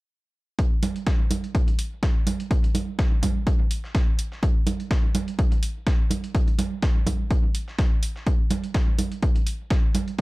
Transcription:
0.59 kick, closed hi-hat
0.83 closed hi-hat, open hi-hat, high conga
0.96 closed hi-hat
1.07 kick, snare, closed hi-hat
1.31 closed hi-hat, open hi-hat, high conga
1.44 closed hi-hat
1.55 kick, closed hi-hat
1.68 closed hi-hat
1.79 closed hi-hat, open hi-hat
2.03 kick, snare, closed hi-hat
2.27 closed hi-hat, open hi-hat, high conga
2.40 closed hi-hat
2.51 kick, closed hi-hat
2.64 closed hi-hat
2.75 closed hi-hat, open hi-hat, high conga
2.99 kick, snare, closed hi-hat
3.23 kick, closed hi-hat, open hi-hat, high conga
3.47 kick, closed hi-hat
3.71 closed hi-hat, open hi-hat
3.84 snare
3.95 kick, snare, closed hi-hat
4.19 closed hi-hat, open hi-hat
4.32 snare
4.43 kick, closed hi-hat
4.67 closed hi-hat, open hi-hat, high conga
4.80 closed hi-hat
4.91 kick, snare, closed hi-hat
5.15 closed hi-hat, open hi-hat, high conga
5.28 closed hi-hat
5.39 kick, closed hi-hat
5.52 closed hi-hat
5.63 closed hi-hat, open hi-hat
5.87 kick, snare, closed hi-hat
6.11 closed hi-hat, open hi-hat, high conga
6.24 closed hi-hat
6.35 kick, closed hi-hat
6.48 closed hi-hat
6.59 closed hi-hat, open hi-hat, high conga
6.82 kick, snare, closed hi-hat
7.07 kick, closed hi-hat, open hi-hat, high conga
7.31 kick, closed hi-hat
7.55 closed hi-hat, open hi-hat
7.68 snare
7.79 kick, snare, closed hi-hat
8.03 closed hi-hat, open hi-hat
8.16 snare
8.26 kick, closed hi-hat
8.50 closed hi-hat, open hi-hat, high conga
8.64 closed hi-hat
8.74 kick, snare, closed hi-hat
8.98 closed hi-hat, open hi-hat, high conga
9.12 closed hi-hat
9.22 kick, closed hi-hat
9.36 closed hi-hat
9.46 closed hi-hat, open hi-hat
9.70 kick, snare, closed hi-hat
9.95 closed hi-hat, open hi-hat, high conga
10.08 closed hi-hat

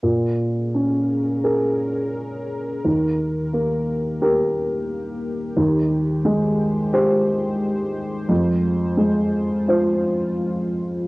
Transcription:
0.03 A#2 C#4 G#4 A#4
0.74 C#4
1.44 G#4 A#4
2.85 D#2 A#3 G4
3.53 A#3
4.22 G4 A#4
5.57 D#2 G#3 C5
6.25 G#3
6.93 G4 C5
8.29 F2 F4
8.97 G#3
9.68 F4 C5

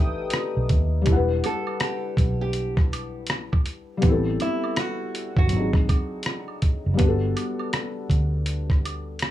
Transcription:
Already playing: A1 A3 D4 D#4 G4 A4 B4 E5 G5 D#6
0.30 cross-stick, closed hi-hat, shaker
0.57 B1
0.69 D#2, kick, closed hi-hat, shaker
1.01 G3 D4
1.06 E1 E4, kick, closed hi-hat, shaker
1.12 B4 F#5
1.44 A4, closed hi-hat, high woodblock, shaker
1.67 high woodblock
1.80 G4, cross-stick, closed hi-hat, shaker
2.17 B1, kick, closed hi-hat, shaker
2.41 G4
2.53 closed hi-hat, shaker
2.77 kick, cross-stick
2.93 closed hi-hat, high woodblock, shaker
3.27 cross-stick, closed hi-hat, shaker
3.52 kick, high woodblock
3.66 closed hi-hat, shaker
3.97 G3 B3
4.02 A1 C4, kick, closed hi-hat, shaker
4.08 E4 A4
4.40 E4, closed hi-hat, high woodblock, shaker
4.64 high woodblock
4.76 F#4, cross-stick, closed hi-hat, shaker
5.15 closed hi-hat, shaker
5.37 G1 F#4, kick
5.46 F#3 C4, closed hi-hat
5.51 G#1 D4, shaker
5.56 D#4 G#4
5.73 kick, cross-stick
5.89 kick, closed hi-hat, high woodblock, shaker
6.23 cross-stick, closed hi-hat, shaker
6.48 high woodblock
6.62 kick, closed hi-hat, shaker
6.86 F#1
6.94 G3 B3
6.99 G1 D4, kick, closed hi-hat, shaker
7.04 F#4 A4
7.36 closed hi-hat, high woodblock, shaker
7.59 high woodblock
7.73 cross-stick, closed hi-hat, shaker
8.10 D2, kick, closed hi-hat, shaker
8.46 closed hi-hat, shaker
8.70 kick, cross-stick
8.85 closed hi-hat, high woodblock, shaker
9.19 cross-stick, closed hi-hat, shaker

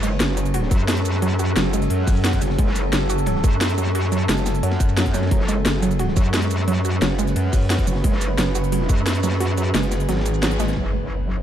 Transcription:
Already playing: F#1 F#3 C#4 G#4 A4
0.03 G#3, snare, closed hi-hat, ride, shaker
0.20 F#1, snare, closed hi-hat, ride
0.29 snare
0.37 F#3, closed hi-hat, ride, shaker
0.46 closed hi-hat, shaker
0.54 F#4, closed hi-hat, ride
0.63 snare
0.71 F#2 F#3, kick, closed hi-hat, ride, shaker
0.80 shaker
0.88 G#3, snare, closed hi-hat, ride
0.97 closed hi-hat
1.05 closed hi-hat, ride, shaker
1.15 snare
1.22 F#3, closed hi-hat, ride
1.31 snare
1.39 F#4, closed hi-hat, ride, shaker
1.56 F#1 F#3, snare, closed hi-hat, ride
1.73 G#3, closed hi-hat, ride, shaker
1.82 snare, closed hi-hat, shaker
1.90 F#2, closed hi-hat, ride
2.07 F#3, kick, closed hi-hat, open hi-hat, shaker
2.16 shaker
2.24 F#4, snare, closed hi-hat, ride
2.33 kick, closed hi-hat, ride
2.42 F#1 F#3, closed hi-hat, ride, shaker
2.50 snare
2.58 F#1 G#3, kick, closed hi-hat, ride
2.67 snare
2.75 snare, closed hi-hat, ride, shaker
2.93 F#1 F#3, snare, closed hi-hat, ride
3.01 snare
3.09 F#4, closed hi-hat, ride, shaker
3.18 closed hi-hat, shaker
3.26 F#3, closed hi-hat, ride
3.36 snare
3.44 F#2 G#3, kick, closed hi-hat, ride, shaker
3.52 shaker
3.60 snare, closed hi-hat, ride
3.69 closed hi-hat
3.78 F#3, closed hi-hat, ride, shaker
3.86 snare
3.95 F#4, closed hi-hat, ride
4.03 snare
4.12 F#3, closed hi-hat, ride, shaker
4.29 F#1 G#3, snare, closed hi-hat, ride
4.38 closed hi-hat, shaker
4.46 snare, closed hi-hat, ride, shaker
4.54 closed hi-hat, ride, shaker
4.63 F#2 F#3, closed hi-hat, ride
4.71 snare, ride
4.80 kick, closed hi-hat, ride, shaker
4.89 ride, shaker
4.97 F#3, snare, closed hi-hat, ride
5.06 kick, closed hi-hat, ride
5.14 F#3, snare, closed hi-hat, ride, shaker
5.22 snare, ride
5.26 snare, ride
5.31 F#1 F#3 B4, kick, closed hi-hat, ride
5.40 snare
5.48 G#3, snare, closed hi-hat, ride, shaker
5.65 F#1, snare, closed hi-hat, ride
5.74 snare
5.82 F#3, closed hi-hat, ride, shaker
5.91 closed hi-hat, shaker
5.99 F#4, closed hi-hat, ride
6.08 snare
6.17 F#2 F#3, kick, closed hi-hat, ride, shaker
6.25 shaker
6.34 G#3, snare, closed hi-hat, ride
6.42 closed hi-hat
6.51 closed hi-hat, ride, shaker
6.59 snare
6.68 F#3, closed hi-hat, ride
6.76 snare
6.85 F#4, closed hi-hat, ride, shaker
7.01 F#1 F#3, snare, closed hi-hat, ride
7.18 G#3, closed hi-hat, ride, shaker
7.27 snare, closed hi-hat, shaker
7.36 F#2, closed hi-hat, ride
7.53 F#3, kick, closed hi-hat, open hi-hat, shaker
7.61 shaker
7.70 F#4, snare, closed hi-hat, ride
7.78 kick, closed hi-hat, ride
7.86 F#1 F#3, closed hi-hat, ride, shaker
7.95 snare
8.04 F#1 G#3, kick, closed hi-hat, ride
8.13 snare
8.21 snare, closed hi-hat, ride, shaker
8.38 F#1 F#3, snare, closed hi-hat, ride
8.46 snare
8.55 F#4, closed hi-hat, ride, shaker
8.64 closed hi-hat, shaker
8.72 F#3, closed hi-hat, ride
8.81 snare
8.89 F#2 G#3, kick, closed hi-hat, ride, shaker
8.98 shaker
9.05 snare, closed hi-hat, ride
9.15 closed hi-hat
9.23 F#3, snare, closed hi-hat, ride, shaker
9.32 snare, ride
9.40 F#4, snare, closed hi-hat, ride
9.49 snare
9.57 F#3, closed hi-hat, ride, shaker
9.74 F#1 G#3, snare, closed hi-hat, ride
9.83 closed hi-hat
9.91 snare, closed hi-hat, ride, shaker
10.00 snare, closed hi-hat, shaker
10.09 G#1 F#3, snare, closed hi-hat, ride
10.12 snare, ride
10.17 snare, ride
10.21 snare, ride
10.25 snare, closed hi-hat, ride, shaker
10.34 shaker
10.41 F#3, snare, closed hi-hat, ride
10.51 snare, closed hi-hat
10.60 G#3, snare, closed hi-hat, ride, shaker
10.64 snare, ride
10.68 snare, closed hi-hat, ride
10.72 snare, ride
10.77 F#1 F#3 C#4 G#4 A4, impact
10.94 G#3
11.28 F#3

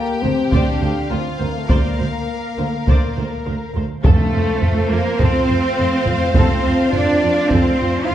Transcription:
Already playing: A#3 G4 G5
0.21 D2 C4 C5
0.52 D2 D4 C5 D5 F5, taiko
0.81 D2 C5
1.10 D2 C4 F4 A#4 C5
1.38 D2 A#3 C5
1.56 A3
1.68 D2 A#3 A#4 C5 D5, taiko
1.98 D2 C5
2.58 D2 C5
2.87 D2 C5 D5, taiko
3.16 D2 C5
3.45 D2 A#4 C5
3.75 D2 C5
4.04 F2 A3 C4 F4 A4 C5 F5, taiko
4.33 F2 F4
4.62 taiko low
4.91 F2 A#3 F4 A#4
5.19 F2 C4 A4 C5, taiko
5.49 F2 F4
5.78 F2 C4
6.06 F2 F4, taiko low
6.35 F2 C4 A4 C5, taiko
6.65 F2 F4
6.93 D4 D5, taiko low
7.22 F2 F4
7.49 F2 C4 A4 C5, taiko
7.80 F2 F4
8.07 F2 C4 F4 F5

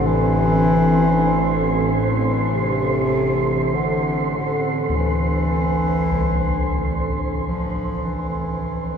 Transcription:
Already playing: A1 C4 D4 A4 C5
0.07 E3
2.52 C3
3.75 D3
4.36 D3
4.89 D2
4.96 E3
6.12 C2
7.43 F3
8.05 E3

